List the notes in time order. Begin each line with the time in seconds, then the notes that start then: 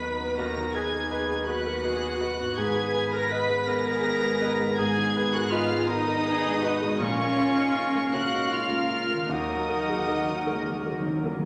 Already playing: D#2 D#3 F#3 B3 A#4 B4 B5 B6
0.00 D#4 B4 D#5
0.21 B3
0.37 D#2 F#4 A#4 B4 D#5 A#5 A#6
0.56 D#3
0.74 G#4 B4 D#5 G#5 G#6
0.94 A#4
1.11 B4 D#5
1.29 B3
1.46 F#4 B4 D#5 F#5 F#6
1.66 A#4
1.84 G#4 B4 D#5
2.02 B3
2.21 F#4 B4 D#5
2.39 G#2 B3
2.44 B3
2.48 G#4
2.53 D#5 G#6
2.57 G#1 G#2 D#3 B3 G#4 B4 G#5
2.76 G#3
2.94 B4
3.12 A#4 A#5 A#6
3.31 B4 D#5 B5 B6
3.49 G#3
3.67 B3 G#4 A#4 A#5 A#6
3.85 A#4
4.04 B3
4.22 G#3
4.40 B3 B4 D#5
4.60 G#3
4.77 G#2 G#4 G#5 G#6
4.98 D#3
5.17 B4
5.33 F#4 A#4 F#5 F#6
5.51 F4 B4 D#5 F5 F6
5.71 G#3
5.87 B3 D#4 A#4 D#5 D#6
6.07 A#4
6.25 G#4 B4
6.44 G#3
6.62 F#4 B4 D#5
6.81 A#2 G#3
6.86 C#4
6.95 C#5
6.99 A#1 A#2 C#3 A#3 C#4 F4 A#4 C#5 F5 C#6
7.19 A#3
7.37 F4
7.56 D#4
7.76 F4
7.96 A#3
8.13 C#2 C#4 F#4 F#5 F#6
8.32 D#4
8.51 F4 F5 F6
8.70 A#3
8.90 F4
9.10 D#3 A#3
9.22 F#4
9.29 D#2 D#3 F#3 D#4 F#4 A#4 D#5 F#5 D#6
9.46 D#3 F#3
9.54 D#3
9.61 D#3
9.69 D#3 A#4
9.77 D#3
9.85 D#3
9.89 D#3 G#4
10.00 D#3
10.07 D#3 A#4
10.15 D#3
10.23 D#3
10.29 D#3 F#3
10.47 D#3 G#3 A#4
10.54 D#3
10.62 D#3
10.66 D#3 G#4
10.76 D#3
10.84 D#3 F#3 A#4
10.93 D#3
11.00 D#3
11.05 D#3 F#3
11.15 D#3
11.24 D#3 F#3 A#4
11.32 D#3
11.39 D#3